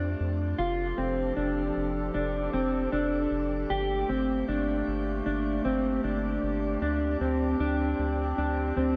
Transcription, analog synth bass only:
0.00 0.15 F2 medium
0.20 0.54 F2 loud
0.59 0.93 F1 loud
0.98 1.32 F1 loud
1.37 1.71 F1 loud
1.76 2.10 F1 medium
2.15 2.49 F1 loud
2.53 2.88 F1 loud
2.93 3.27 F1 loud
3.31 3.65 F1 loud
3.70 4.04 G1 loud
4.09 4.44 G1 medium
4.48 4.83 G1 loud
4.87 5.22 G1 loud
5.26 5.60 G1 loud
5.65 5.99 G1 loud
6.04 6.38 G1 loud
6.43 6.77 G1 loud
6.81 7.16 D2 loud
7.20 7.55 D2 loud
7.60 7.94 D2 loud
7.99 8.33 D2 loud
8.38 8.72 D2 medium
8.77 8.96 D2 loud

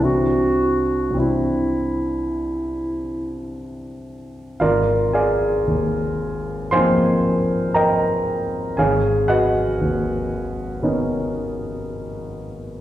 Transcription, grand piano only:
0.00 1.09 C2 soft
0.00 1.11 E3 soft
0.00 1.13 C4 soft
0.00 1.15 D4 soft
0.00 1.16 E4 soft
1.10 4.51 C2 soft
1.10 4.52 E3 soft
1.10 4.53 C4 soft
1.17 4.54 D4 soft
1.17 4.55 E4 soft
4.60 8.74 G#1 soft
4.60 5.10 F4 soft
4.60 5.10 A#4 soft
4.60 5.10 D5 soft
4.60 5.13 F5 medium
5.13 6.68 G#4 soft
5.13 6.68 D5 soft
5.13 6.68 F5 soft
5.13 6.71 G#5 medium
5.67 7.34 D#2 soft
6.71 8.74 F3 soft
6.71 8.74 A#3 soft
6.71 8.74 C4 soft
6.71 8.74 D#4 soft
6.71 7.71 C5 soft
6.71 7.71 F5 soft
6.71 7.71 G#5 soft
6.71 7.74 C6 medium
7.74 8.74 A#4 soft
7.74 8.74 D#5 soft
7.74 8.74 G5 soft
7.74 8.77 A#5 medium
8.77 12.81 G#1 soft
8.77 9.26 G#4 soft
8.77 9.26 C#5 soft
8.77 9.26 F5 soft
8.77 9.29 G#5 medium
9.28 12.81 F#4 soft
9.28 12.81 B4 soft
9.28 12.81 D#5 soft
9.28 12.81 F#5 medium
9.81 11.43 D#2 soft
10.82 12.81 D#3 soft
10.82 12.81 B3 soft
10.82 12.81 C#4 soft
10.82 12.81 D#4 soft

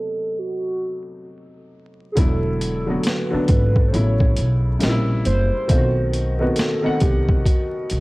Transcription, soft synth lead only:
0.00 0.40 A4 medium
0.39 1.28 F#4 medium
2.12 2.20 G#4 medium
2.19 3.08 A4 medium
3.07 3.50 B4 medium
3.50 3.90 B4 loud
3.88 3.95 C5 medium
3.94 4.82 C#5 loud
5.26 6.37 C5 loud
6.40 6.48 B4 medium
6.56 7.02 A4 loud
7.00 7.46 G4 medium
7.45 8.00 F#4 medium

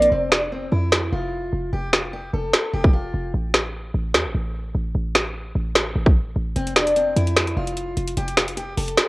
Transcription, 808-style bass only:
0.00 0.11 A#1 loud
0.12 0.70 F1 loud
0.72 1.11 F2 loud
1.12 1.51 F1 loud
1.53 1.72 F1 loud
1.73 2.31 F1 loud
2.33 2.52 F1 loud
2.73 3.12 F1 loud
3.14 3.33 F1 loud
3.34 3.92 A1 loud
3.94 4.16 A1 loud
4.14 4.27 E2 loud
4.25 4.34 A1 loud
4.34 4.73 A1 loud
4.75 4.94 A1 loud
4.95 5.53 A1 loud
5.55 5.94 A1 loud
5.96 6.34 A1 loud
6.36 6.55 A1 loud
6.56 7.14 F1 loud
7.16 7.55 F2 loud
7.57 7.95 F1 loud
7.97 8.16 F1 loud
8.17 8.75 F1 loud
8.77 8.97 F1 loud

